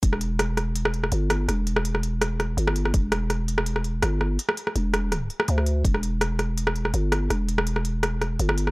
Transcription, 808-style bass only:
X:1
M:4/4
L:1/8
Q:"Swing 16ths" 1/4=165
K:Em
V:1 name="808-style bass" clef=bass
E,,,6 G,,,2 | E,,,6 G,,,2 | E,,,6 G,,,2 | z2 E,,,3 z D,,2 |
E,,,6 G,,,2 | E,,,6 G,,,2 |]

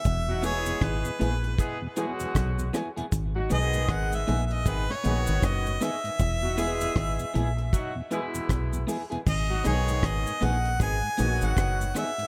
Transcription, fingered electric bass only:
X:1
M:4/4
L:1/16
Q:"Swing 16ths" 1/4=78
K:G#m
V:1 name="Fingered electric bass" clef=bass
E,,,4 G,,, z A,,,2 z4 B,,,2 z2 | G,,,2 B,,,2 G,,,2 A,,,2 G,,, z A,,, G,,, F,,,2 z2 | E,,,4 G,,, z A,,,2 z4 B,,,2 z2 | G,,,2 B,,,2 G,,, z A,,,2 G,,, z A,,, G,,, F,,,2 z2 |]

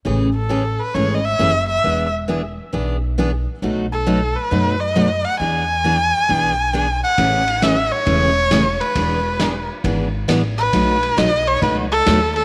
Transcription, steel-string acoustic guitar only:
X:1
M:4/4
L:1/8
Q:"Swing" 1/4=135
K:A
V:1 name="Steel-string acoustic guitar"
[C,E,A,CG] z [C,E,A,CG] z [C,E,A,CG] z [C,E,A,CG] z | [E,B,DG] z [E,B,DG] z [E,B,DG] z [E,B,DG] z | [B,,F,A,^DF] z [B,,F,A,DF] z [B,,F,A,DF] z [B,,F,A,DF] z | [E,B,DG] z [E,B,DG] z [E,B,DG] z [E,B,DG] z |
[C,E,A,CG] z [C,E,A,CG] z [C,E,A,CG] z [C,E,A,CG] z | [E,B,DG] z [E,B,DG] z [E,B,DG] z [E,B,DG] z | [B,,F,A,^DF] z [B,,F,A,DF] z [B,,F,A,DF] z [B,,F,A,DF] z |]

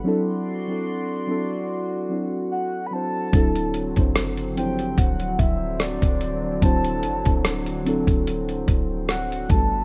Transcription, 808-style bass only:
X:1
M:4/4
L:1/16
Q:"Swing 16ths" 1/4=73
K:Dmix
V:1 name="808-style bass" clef=bass
z16 | D,,,3 F,,,4- F,,, D,,,2 D,,,3 D,,,3 | D,,,2 F,,, D,,,4 D,,,3 D,,,4 G,,,2 |]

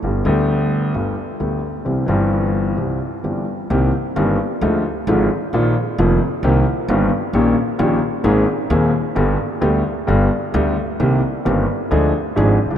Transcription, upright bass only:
X:1
M:4/4
L:1/16
Q:1/4=132
K:C
V:1 name="Upright bass" clef=bass
G,,,3/2 z/2 D,,4- D,,3/2 z/2 G,,,3/2 z2 z/2 D,,3/2 z2 z/2 | C,,3/2 z/2 G,,,4- G,,,3/2 z/2 C,,3/2 z2 z/2 G,,,3/2 z2 z/2 | [K:Cm] C,,3/2 z2 z/2 G,,,3/2 z2 z/2 D,,3/2 z2 z/2 A,,,3/2 z2 z/2 | B,,,3/2 z2 z/2 F,,,3/2 z2 z/2 C,,3/2 z2 z/2 G,,,3/2 z2 z/2 |
B,,,3/2 z2 z/2 B,,,3/2 z2 z/2 A,,,3/2 z2 z/2 E,,3/2 z2 z/2 | G,,,3/2 z2 z/2 D,,3/2 z2 z/2 G,,,3/2 z2 z/2 D,,3/2 z2 z/2 | C,,3/2 z2 z/2 G,,,3/2 z2 z/2 D,,3/2 z2 z/2 A,,,3/2 z C,,/2 _D,,/2 z/2 |]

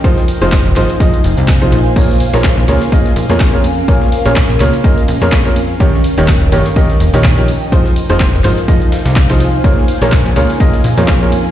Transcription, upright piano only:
X:1
M:4/4
L:1/16
Q:"Swing 16ths" 1/4=125
K:Bbdor
V:1 name="Upright piano"
[F,EFAc] z2 [F,EFAc] z2 [F,EFAc] z [F,EFAe] z4 [F,EFAc] z2 | [B,FABd] z2 [B,FABd] z2 [B,FABd] z [B,FABe] z2 [B,FABd]2 [B,FABd] z2 | [B,FABd] z2 [B,FABd] z2 [B,FABd] z [B,FABe] z2 [B,FABd]2 [B,FABd] z2 | [E,EGBd] z2 [E,EGBd] z2 [E,EGBd] z [E,EGBe] z2 [E,EGBd]2 [F,EGBd] z2 |
[F,EFAc] z2 [F,EFAc] z2 [F,EFAc] z [F,EFAe] z4 [F,EFAc] z2 | [B,FABd] z2 [B,FABd] z2 [B,FABd] z [B,FABe] z2 [B,FABd]2 [B,FABd] z2 |]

